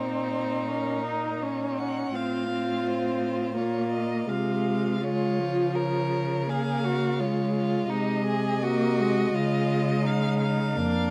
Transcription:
Already playing: cello A#2, viola C4, violin D#4 C5
0.68 viola C#4, violin A#4
1.06 viola D#4
1.43 viola C#4, violin C#5
1.78 violin F#5
2.15 cello A2, viola C4, violin F4 F5
2.51 viola C4
2.87 violin C5
3.56 cello A#2, viola A#3, violin F4 C#5
3.92 violin D#5
4.28 cello C3, viola G#3, violin F4 F5
5.02 cello C#3, viola G#3, violin F4 C#5
5.40 viola F3
5.75 violin A#4 C#5
6.49 viola A#3, violin G#4 F5
6.84 violin F#4
7.19 viola G#3, violin F4 C#5
7.54 violin F4
7.90 cello C3, viola G#3, violin D#4 D#5
8.26 violin G#4
8.63 viola A#3, violin F#4
9.00 viola G#3
9.35 cello C#3, viola G#3, violin F4
10.06 violin D#4 F5
10.41 violin F5
10.76 cello F2, viola A#3, violin D4

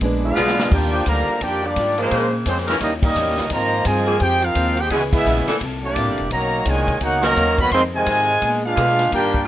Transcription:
0.01 upright bass A#1, grand piano G#3 B3 D4, steel-string acoustic guitar A#3 D4 G#4, kick, ride
0.05 steel-string acoustic guitar B4
0.23 trombone section G#3 D4 F4, trumpet section D4 G#4 B4 F5
0.36 upright bass B1, saxophone section G#3 B3 D4 F4, steel-string acoustic guitar A#3 D4 G#4 B4, snare, hi-hat pedal
0.48 snare
0.60 snare
0.71 upright bass D#2, steel-string acoustic guitar D#3 G3 D4 F4, trombone section A#3 D4 G4, trumpet section F4 A#4 D5 G5, kick, crash
0.92 saxophone section F3 D4 F4 G4
1.06 upright bass D2, trombone section D3 G3 A#3, steel-string acoustic guitar D#3 G3 D4 F4, trumpet section G4 D5 F5 A#5, kick, hi-hat pedal, ride
1.29 muted upright bass stroke
1.41 upright bass F2, steel-string acoustic guitar D#3 G3 D4 F4, trombone section A#3 D4 G4, trumpet section F4 A#4 D5 G5, kick, ride
1.63 trombone section G3 A#3 D4, trumpet section A#3 F4 G4 D5
1.76 upright bass G#2, steel-string acoustic guitar D#3 G3 D4 F4, kick, hi-hat pedal, ride
1.98 trombone section F3 G#3 A#3, trumpet section G#3 C#4 F4 C5, ride
2.11 upright bass A#2, saxophone section C#3 A#3 C4 G#4, steel-string acoustic guitar A#3 C#4 G#4 C5, kick, ride
2.46 upright bass F2, trombone section F3 G#3 C4, trumpet section G#3 C#4 F4 C5, steel-string acoustic guitar A#3 C#4 G#4 C5, kick, hi-hat pedal, ride
2.58 snare
2.67 saxophone section E3 C#4 D#4 A#4, trombone section F3 G#3 C#4, trumpet section G#3 C4 F4 C#5, snare, ride
2.80 upright bass D#2, steel-string acoustic guitar D#3 G3 C#4 E4, trombone section G3 A#3 D#4, trumpet section C#4 G4 A#4 D#5, kick, snare, ride
3.02 trombone section G3 A#3 D#4, trumpet section C#4 G4 A#4 D#5, kick, crash
3.15 upright bass E2, steel-string acoustic guitar D#3 G3 C#4 E4, hi-hat pedal
3.28 upright bass D#2
3.37 upright bass C#2, snare
3.50 upright bass G#2, trombone section D#3 F3 A#3, steel-string acoustic guitar G#3 C4 F4 A#4, trumpet section F4 C5 D#5 A#5, kick, ride
3.85 upright bass G2, trombone section D#3 F3 G#4, steel-string acoustic guitar G#3 C4 F4 A#4, trumpet section F4 C5 D#5 G#5, kick, hi-hat pedal, ride
4.07 saxophone section F3 A#3 C4 G#4
4.20 upright bass F2, steel-string acoustic guitar G#3 C4 F4 A#4, trumpet section D#4 G#4 C5 G5, trombone section G4, kick, ride
4.42 trombone section F3 C4 F4, trumpet section D#4 A#4 C5 F5, ride
4.55 upright bass D#2, steel-string acoustic guitar G#3 C4 F4 A#4, kick, hi-hat pedal, ride
4.77 trumpet section D#4 G#4 C5 G5, trombone section G4, ride
4.90 upright bass C#2, trombone section B2 E3 G#3, steel-string acoustic guitar C#3 B3 E4 G#4, saxophone section E3 B3 C#4 G#4, trumpet section E4 B4 C#5 G#5, kick, ride
5.12 trombone section G#3 B3 E4, trumpet section C#4 G#4 B4 E5, kick, crash
5.26 upright bass A#1, steel-string acoustic guitar C#3 B3 E4 G#4, hi-hat pedal
5.47 saxophone section E3 A#3 D4 A4, snare, ride
5.61 upright bass C2, steel-string acoustic guitar C3 A#3 E4 A4, kick, ride
5.83 trombone section G3 A#3 D4, trumpet section A#3 E4 G4 D5
5.96 upright bass A1, steel-string acoustic guitar C3 A#3 E4 A4, kick, hi-hat pedal, ride
6.07 upright bass G1
6.18 upright bass E1, ride
6.31 upright bass B1, steel-string acoustic guitar B2 D#3 A#3 C#4, trombone section D#3 F#3 A#3, trumpet section F#4 C#5 D#5 A#5, kick, ride
6.65 upright bass C2, trombone section A#2 D#3 G#3, steel-string acoustic guitar B2 D#3 A#3 C#4, trumpet section F#4 C#5 D#5 G#5, kick, hi-hat pedal, ride
6.88 kick, ride
7.01 upright bass C#2, steel-string acoustic guitar B2 D#3 A#3 C#4, trombone section A#3 D#4 F#4, trumpet section C#5 F#5, kick, ride
7.05 trumpet section D#4 A#4
7.21 saxophone section B2 D#3 C#4 A#4, trombone section D#3 F#3 A#3, trumpet section C#5, snare, ride
7.26 trumpet section F#4 D#5 A#5
7.36 upright bass D#2, steel-string acoustic guitar B2 D#3 A#3 C#4, hi-hat pedal
7.58 trombone section D#3 F#3 B3, trumpet section F#4 C#5 D#5 B5, kick, ride
7.71 upright bass F2, steel-string acoustic guitar F2 D#3 G#3 C4, trombone section D#3 G#3 C4, trumpet section G#4 D#5 F5 C6, kick, ride
7.95 trombone section C3 D#3 G#3, trumpet section F4 C5 D#5 G#5
8.06 steel-string acoustic guitar F2 D#3 G#3 C4, upright bass G#2, kick, hi-hat pedal, ride
8.41 steel-string acoustic guitar A#2 G#3 B3 D4, upright bass A#2, kick, ride
8.65 trombone section G#3 D4 F4, trumpet section D4 G#4 B4 F5
8.75 steel-string acoustic guitar A#2 G#3 B3 D4, upright bass B2, saxophone section D3 A#3 B3 G#4, kick, hi-hat pedal, ride
8.99 snare, ride
9.11 upright bass G2, steel-string acoustic guitar D#3 G3 D4 F4, trombone section A#3 D4 G4, trumpet section F4 A#4 D5 G5, kick, ride
9.34 kick

